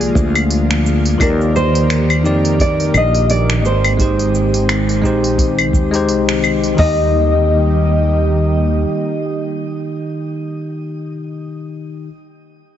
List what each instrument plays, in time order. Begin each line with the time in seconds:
Already playing: fretless electric bass C2, analog synth pad D3 F3 G#3 A#3 F4, tine electric piano G#3 A#3 F4 G#4 D5, nylon-string guitar G#4
0.01 open hi-hat, shaker
0.15 fretless electric bass D2, kick, shaker
0.35 open hi-hat, claves, shaker
0.51 open hi-hat, shaker
0.71 finger snap, open hi-hat
0.86 shaker
1.06 open hi-hat, shaker
1.18 fretless electric bass D#2, tine electric piano D#3 D#4 G4, analog synth pad D#3 A#3 G4 A#4, nylon-string guitar A#4, kick, open hi-hat, claves, shaker
1.23 tine electric piano D5
1.41 shaker
1.56 nylon-string guitar C5, shaker
1.75 open hi-hat, shaker
1.90 finger snap, open hi-hat, shaker
2.10 open hi-hat, claves, shaker
2.24 fretless electric bass F2, tine electric piano D#3 D#4 G4 D5, shaker
2.45 open hi-hat, shaker
2.59 nylon-string guitar D5, kick, open hi-hat, shaker
2.80 open hi-hat, shaker
2.94 fretless electric bass A#1, nylon-string guitar D#5, claves, shaker
3.15 open hi-hat, shaker
3.30 nylon-string guitar D5, open hi-hat, shaker
3.50 finger snap, open hi-hat
3.64 fretless electric bass G#1, analog synth pad D#3 G#3 C4 G4, nylon-string guitar C5, shaker
3.84 open hi-hat, claves, shaker
3.97 tine electric piano G#3 D#4 G4, kick, open hi-hat, shaker
4.02 tine electric piano C5
4.19 open hi-hat, shaker
4.35 shaker
4.54 open hi-hat, shaker
4.69 finger snap, open hi-hat, claves, shaker
4.89 open hi-hat, shaker
5.02 fretless electric bass A#1, tine electric piano G#3 D#4 G4, kick, shaker
5.06 tine electric piano C5
5.24 open hi-hat, shaker
5.38 kick, open hi-hat, shaker
5.59 open hi-hat, claves, shaker
5.73 fretless electric bass D#2, kick, shaker
5.91 tine electric piano G#3 D#4 G4, open hi-hat, shaker
5.96 tine electric piano C5
6.09 fretless electric bass C2, open hi-hat, shaker
6.29 finger snap, open hi-hat
6.44 claves, shaker
6.64 open hi-hat, shaker
6.75 fretless electric bass D#2, tine electric piano D#3 D#4, analog synth pad D#3 G3 A#3 G4 D#5, kick, open hi-hat
6.79 tine electric piano G4 D#5, nylon-string guitar D#5